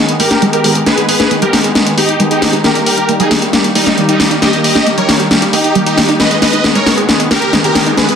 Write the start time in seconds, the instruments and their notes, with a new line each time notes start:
Already playing: supersaw synth D#3 G#3 B3 G#4
0.09 synth arpeggio sound D#4, closed hi-hat
0.20 fm bass G#1, synth arpeggio sound B3, supersaw synth G4 A#4, open hi-hat
0.31 fm bass G#1, snare, closed hi-hat
0.42 supersaw synth D#3 G#3 B3 G#4, synth arpeggio sound G#3, closed hi-hat
0.53 supersaw synth G4 A#4, closed hi-hat
0.64 fm bass G#2, supersaw synth D#3 G#3 B3 G#4, open hi-hat
0.75 fm bass G#1, synth arpeggio sound D#4, closed hi-hat
0.86 supersaw synth D#3 G#3 B3 G#4 B4, snare, closed hi-hat
0.98 supersaw synth D#3 G#3 B3 G#4, synth arpeggio sound G#4, closed hi-hat
1.09 fm bass G#1, supersaw synth G#4 B4, open hi-hat
1.20 fm bass G#2, synth arpeggio sound D#4, snare, closed hi-hat
1.31 supersaw synth D#3 G#3 B3 G#4, synth arpeggio sound B3, closed hi-hat
1.42 synth arpeggio sound G#3, supersaw synth G4 A#4, closed hi-hat
1.53 fm bass G#1, supersaw synth D#3 G#3 B3 G#4, snare, open hi-hat
1.64 fm bass G#1, synth arpeggio sound G#4, closed hi-hat
1.75 supersaw synth D#3 G#3 B3 G#4, snare, closed hi-hat
1.86 synth arpeggio sound D#4, closed hi-hat
1.98 fm bass G#1, synth arpeggio sound B3, supersaw synth D#4 G4, open hi-hat
2.09 fm bass G#1, closed hi-hat
2.20 supersaw synth D#3 G#3 B3 G#4, synth arpeggio sound G#3, closed hi-hat
2.31 supersaw synth D#4 G4, synth arpeggio sound G#4, closed hi-hat
2.42 fm bass G#2, supersaw synth D#3 G#3 B3 G#4, snare, open hi-hat
2.53 synth arpeggio sound D#4, closed hi-hat
2.64 supersaw synth D#3 G3 A#3 G4 A#4, snare, closed hi-hat
2.75 supersaw synth D#3 G3 A#3 G4, synth arpeggio sound G4, closed hi-hat
2.86 fm bass D#2, supersaw synth G4 A#4, open hi-hat
2.98 fm bass D#1, synth arpeggio sound D#4, closed hi-hat
3.09 supersaw synth D#3 G3 A#3 G4, synth arpeggio sound A#3, closed hi-hat
3.20 synth arpeggio sound G3, supersaw synth D#4 G#4, closed hi-hat
3.31 fm bass D#2, supersaw synth D#3 G3 A#3 G4, snare, open hi-hat
3.42 fm bass D#2, synth arpeggio sound G4, closed hi-hat
3.53 supersaw synth D#3 G3 A#3 G4, snare, closed hi-hat
3.64 synth arpeggio sound D#4, closed hi-hat
3.75 fm bass D#2, supersaw synth G3 D#4, synth arpeggio sound A#3, open hi-hat
3.86 fm bass D#2, snare, closed hi-hat
3.98 supersaw synth D#3 G3 A#3 G4, synth arpeggio sound G3, closed hi-hat
4.09 supersaw synth G3 D#4, synth arpeggio sound G4, closed hi-hat
4.20 fm bass D#1, supersaw synth D#3 G3 A#3 G4, snare, open hi-hat
4.31 fm bass D#2, synth arpeggio sound D#4, closed hi-hat
4.42 supersaw synth D#3 G3 A#3 G4 D#5, snare, closed hi-hat
4.53 supersaw synth D#3 G3 A#3 G4, synth arpeggio sound G4, closed hi-hat
4.64 fm bass D#2, supersaw synth G4 D#5, open hi-hat
4.75 synth arpeggio sound D#4, snare, closed hi-hat
4.86 supersaw synth D#3 G3 A#3 G4, synth arpeggio sound A#3, closed hi-hat
4.97 synth arpeggio sound G3, supersaw synth A#4 C#5, closed hi-hat
5.09 fm bass D#2, supersaw synth D#3 G3 A#3 G4, snare, open hi-hat
5.20 fm bass D#2, synth arpeggio sound G4, closed hi-hat
5.31 supersaw synth D#3 G3 A#3 G4, snare, closed hi-hat
5.42 synth arpeggio sound D#4, closed hi-hat
5.53 fm bass D#2, synth arpeggio sound A#3, supersaw synth D#4 G4, open hi-hat
5.64 fm bass D#2, closed hi-hat
5.75 supersaw synth D#3 G3 A#3 G4, synth arpeggio sound G3, closed hi-hat
5.86 supersaw synth D#4 G4, synth arpeggio sound G4, closed hi-hat
5.98 supersaw synth D#3 G3 A#3 G4, snare, open hi-hat
6.09 fm bass D#2, synth arpeggio sound D#4, closed hi-hat
6.20 supersaw synth D#3 G#3 B3 G#4 B4 D#5, snare, closed hi-hat, riser
6.31 supersaw synth D#3 G#3 B3 G#4, synth arpeggio sound G#4, closed hi-hat
6.42 fm bass G#1, supersaw synth B4 D#5, snare, open hi-hat
6.53 fm bass G#2, synth arpeggio sound D#4, closed hi-hat
6.64 supersaw synth D#3 G#3 B3 G#4, synth arpeggio sound B3, snare, closed hi-hat
6.75 synth arpeggio sound G#3, supersaw synth A#4 C#5, closed hi-hat
6.86 fm bass G#1, supersaw synth D#3 G#3 B3 G#4, snare, open hi-hat
6.97 fm bass G#1, synth arpeggio sound G#4, closed hi-hat
7.09 supersaw synth D#3 G#3 B3 G#4, snare, closed hi-hat
7.20 synth arpeggio sound D#4, closed hi-hat
7.31 fm bass G#1, synth arpeggio sound B3, supersaw synth G4 A#4, snare, open hi-hat
7.42 fm bass G#1, closed hi-hat
7.53 supersaw synth D#3 G#3 B3 G#4, synth arpeggio sound G#3, snare, closed hi-hat
7.64 supersaw synth G4 A#4, synth arpeggio sound G#4, closed hi-hat
7.75 fm bass G#2, supersaw synth D#3 G#3 B3 G#4, snare, open hi-hat
7.86 synth arpeggio sound D#4, closed hi-hat
7.98 supersaw synth D#3 G#3 B3 G#4 B4, snare, closed hi-hat
8.09 supersaw synth D#3 G#3 B3 G#4, synth arpeggio sound G#4, closed hi-hat